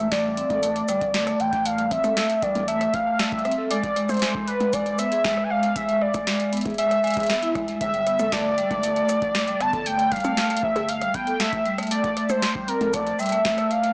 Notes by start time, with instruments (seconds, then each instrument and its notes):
Already playing: sub bass A1
0.12 vibraphone A3, soft synth lead D5, kick, snare, closed hi-hat
0.24 vibraphone G3
0.37 vibraphone C4, closed hi-hat
0.50 sub bass A1, vibraphone A4, kick, closed hi-hat, high tom
0.63 vibraphone A3, closed hi-hat, cabasa
0.76 closed hi-hat
0.89 sub bass G1, vibraphone G3, cross-stick, closed hi-hat, cabasa
1.01 kick, closed hi-hat
1.14 vibraphone A3, snare, closed hi-hat
1.27 vibraphone A3, cross-stick, closed hi-hat
1.40 sub bass A1, soft synth lead G5, closed hi-hat
1.53 vibraphone A3, kick, closed hi-hat
1.65 vibraphone A3, soft synth lead F5, closed hi-hat
1.78 vibraphone G3, closed hi-hat
1.91 vibraphone C4, soft synth lead E5, kick, cross-stick, closed hi-hat
2.04 vibraphone A4, cross-stick, closed hi-hat, high tom, cabasa
2.17 vibraphone A3, snare, closed hi-hat
2.30 closed hi-hat
2.42 vibraphone G3, soft synth lead D5, kick, closed hi-hat
2.55 sub bass A1, closed hi-hat, high tom
2.58 high tom
2.60 high tom
2.63 high tom
2.65 vibraphone A3, soft synth lead E5, closed hi-hat, high tom
2.81 vibraphone A3, cross-stick, closed hi-hat
2.94 soft synth lead F5, kick, closed hi-hat
3.07 vibraphone A3
3.19 vibraphone A3, soft synth lead E5, snare, closed hi-hat
3.32 vibraphone G3, kick, closed hi-hat
3.39 closed hi-hat
3.45 vibraphone C4, cross-stick, closed hi-hat
3.51 closed hi-hat
3.58 vibraphone A4
3.71 vibraphone G#3, soft synth lead D5, closed hi-hat
3.83 kick, closed hi-hat
3.96 vibraphone G#3, cross-stick, closed hi-hat
4.09 soft synth lead C5, cross-stick, closed hi-hat, high tom, cabasa
4.12 closed hi-hat
4.14 closed hi-hat
4.17 closed hi-hat
4.19 snare, closed hi-hat
4.22 vibraphone G#3, closed hi-hat
4.35 vibraphone G#3, kick
4.48 soft synth lead B4, closed hi-hat
4.60 sub bass E1, vibraphone G#3, closed hi-hat, high tom
4.73 vibraphone G#3, soft synth lead D5, kick, closed hi-hat, cabasa
4.86 vibraphone G#3, closed hi-hat
4.99 vibraphone B3, soft synth lead E5, cross-stick, closed hi-hat, cabasa
5.12 vibraphone G#4, closed hi-hat
5.24 vibraphone G#3, kick, snare
5.37 cross-stick
5.44 soft synth lead G#5
5.50 vibraphone G#3, soft synth lead F5
5.63 closed hi-hat
5.76 vibraphone G#3, soft synth lead E5, kick, closed hi-hat
5.89 vibraphone G#3, closed hi-hat
6.01 soft synth lead D5, cross-stick
6.14 vibraphone G#3, kick, cross-stick, closed hi-hat, high tom, cabasa
6.27 vibraphone G#3, snare, closed hi-hat
6.40 vibraphone G#3, closed hi-hat
6.53 vibraphone B3, closed hi-hat
6.57 closed hi-hat
6.61 closed hi-hat
6.65 sub bass E1, vibraphone G#4, kick, closed hi-hat, high tom
6.70 closed hi-hat
6.74 closed hi-hat
6.78 vibraphone G#3, soft synth lead E5, closed hi-hat
6.91 cross-stick, closed hi-hat
7.04 vibraphone G#3, closed hi-hat
7.07 closed hi-hat
7.10 closed hi-hat
7.14 vibraphone G#4, kick, closed hi-hat
7.17 closed hi-hat
7.20 closed hi-hat
7.23 closed hi-hat
7.26 sub bass E1, vibraphone B3, snare, closed hi-hat
7.30 closed hi-hat
7.42 vibraphone E4, closed hi-hat
7.55 vibraphone G#3, kick, cross-stick, closed hi-hat
7.68 vibraphone G#3, closed hi-hat
7.81 sub bass G1, soft synth lead E5, kick, closed hi-hat
7.94 vibraphone G3, closed hi-hat
8.07 vibraphone B3, cross-stick, closed hi-hat
8.19 vibraphone A4, cross-stick, closed hi-hat, high tom, cabasa
8.32 vibraphone A3, soft synth lead D5, kick, snare, closed hi-hat
8.58 vibraphone G3, closed hi-hat
8.71 sub bass G1, vibraphone A3, kick, closed hi-hat, high tom
8.83 vibraphone A3, closed hi-hat, cabasa
8.96 vibraphone A3, closed hi-hat
9.09 sub bass F1, cross-stick, closed hi-hat, cabasa
9.22 vibraphone A3, kick, closed hi-hat
9.35 snare, closed hi-hat
9.48 vibraphone G3, closed hi-hat
9.60 sub bass G1, vibraphone B3, soft synth lead A5, cross-stick, closed hi-hat
9.73 vibraphone A4, kick, closed hi-hat
9.86 vibraphone A3, soft synth lead G5, closed hi-hat
9.99 closed hi-hat
10.12 vibraphone G3, soft synth lead F5, kick, cross-stick, closed hi-hat
10.16 closed hi-hat
10.20 closed hi-hat
10.24 vibraphone A3, cross-stick, closed hi-hat, high tom, cabasa
10.37 vibraphone A3, snare, closed hi-hat
10.50 vibraphone A3, closed hi-hat
10.57 closed hi-hat
10.63 soft synth lead E5, kick
10.76 sub bass G1, vibraphone A3, closed hi-hat, high tom
10.89 soft synth lead F5, closed hi-hat
11.01 vibraphone G3, cross-stick, closed hi-hat
11.14 vibraphone B3, soft synth lead G5, kick, closed hi-hat
11.27 vibraphone A4, closed hi-hat
11.40 vibraphone A3, soft synth lead E5, snare, closed hi-hat
11.53 kick, closed hi-hat
11.65 vibraphone G3, closed hi-hat
11.78 vibraphone A3, cross-stick, closed hi-hat
11.83 closed hi-hat
11.87 closed hi-hat
11.91 vibraphone A3, soft synth lead D5, closed hi-hat
12.04 vibraphone A3, kick, closed hi-hat
12.17 cross-stick, closed hi-hat
12.30 vibraphone A3, soft synth lead C5, cross-stick, closed hi-hat, high tom, cabasa
12.42 snare, closed hi-hat
12.55 vibraphone G3, kick
12.68 vibraphone C4, soft synth lead A#4, closed hi-hat
12.81 sub bass A#1, vibraphone A4, closed hi-hat, high tom
12.94 vibraphone A3, soft synth lead D5, kick, closed hi-hat, cabasa
13.07 closed hi-hat
13.19 vibraphone G3, soft synth lead E5, closed hi-hat, cabasa
13.23 closed hi-hat
13.26 closed hi-hat
13.29 vibraphone A3, closed hi-hat
13.32 closed hi-hat
13.45 vibraphone A3, kick, snare, closed hi-hat
13.58 vibraphone A3, cross-stick, closed hi-hat
13.71 soft synth lead F5, closed hi-hat
13.83 vibraphone A3, closed hi-hat